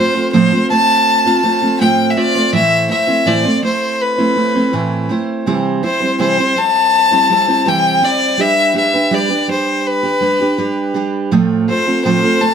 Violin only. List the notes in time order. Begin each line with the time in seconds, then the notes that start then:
Already playing: C5
0.33 C5
0.70 A5
1.81 G5
2.11 E5
2.18 D5
2.55 E5
2.91 E5
3.27 D5
3.65 C5
4.01 B4
5.84 C5
6.21 C5
6.58 A5
7.68 G5
8.05 D5
8.41 E5
8.78 E5
9.14 D5
9.51 C5
9.87 B4
11.69 C5
12.05 C5
12.41 A5